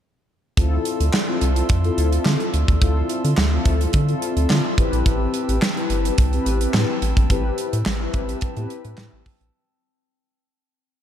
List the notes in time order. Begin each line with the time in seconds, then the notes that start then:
0.57 D2 C4 E4 F4 A4 D5 E5 C6 E6, kick, closed hi-hat
0.85 closed hi-hat
1.00 D2, closed hi-hat
1.14 snare, clap
1.28 C4 E4 F4 A4
1.41 C2, closed hi-hat
1.56 closed hi-hat
1.69 F2, kick, closed hi-hat
1.84 C4 E4 F4 A4, closed hi-hat
1.98 D2, closed hi-hat
2.13 closed hi-hat
2.26 D3, snare, clap
2.40 closed hi-hat
2.54 D2, closed hi-hat
2.68 D#2, kick, closed hi-hat
2.81 D2 C4 E4 F4 A4, kick, closed hi-hat
3.09 closed hi-hat
3.25 D3, closed hi-hat
3.38 D2, snare, clap
3.52 C4 E4 F4 A4
3.65 D2, kick, closed hi-hat
3.81 closed hi-hat
3.93 D3, kick, closed hi-hat
4.08 C4 E4 F4 A4, closed hi-hat
4.22 closed hi-hat
4.37 D2, closed hi-hat
4.50 D3, snare, clap
4.77 A1 C4 E4 G4 B4 G5 A5, kick, closed hi-hat
4.93 A#1, closed hi-hat
5.06 A1, kick, closed hi-hat
5.34 closed hi-hat
5.49 A1, closed hi-hat
5.62 snare, clap
5.76 C4 E4 G4 B4, closed hi-hat
5.90 G1, closed hi-hat
6.05 closed hi-hat
6.18 C2, kick, closed hi-hat
6.32 C4 E4 G4 B4, closed hi-hat
6.46 A1, closed hi-hat
6.61 closed hi-hat
6.74 A2, snare, clap
7.02 A1, closed hi-hat
7.17 A#1, kick, closed hi-hat
7.30 A1 C4 E4 G4 B4, kick, closed hi-hat
7.58 closed hi-hat
7.73 A2, closed hi-hat
7.86 A1, snare, clap
8.00 C4 E4 G4 B4
8.14 A1, kick, closed hi-hat
8.29 closed hi-hat
8.41 kick, closed hi-hat
8.56 A2 B3 E4 G4 B4, closed hi-hat
8.63 C4
8.70 closed hi-hat
8.85 A2, closed hi-hat
8.98 A2, snare, clap
9.13 A1
9.26 kick, open hi-hat
9.41 A#1, closed hi-hat